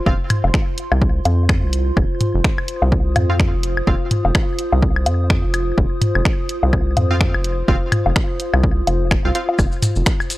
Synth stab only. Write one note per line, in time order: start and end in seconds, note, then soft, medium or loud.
0.06 0.14 C4 medium
0.06 0.14 F4 medium
0.06 0.14 F5 loud
3.30 3.35 C4 medium
3.30 3.35 F4 medium
3.30 3.35 F5 loud
3.87 3.95 C4 medium
3.87 3.95 F4 medium
3.87 3.95 F5 medium
7.11 7.16 C4 medium
7.11 7.16 F4 medium
7.11 7.16 F5 loud
7.68 7.76 C4 medium
7.68 7.76 F4 medium
7.68 7.76 F5 medium
9.25 9.31 C4 medium
9.25 9.31 F4 medium
9.25 9.31 F5 medium
9.35 9.43 C4 medium
9.35 9.43 F4 medium
9.35 9.43 F5 medium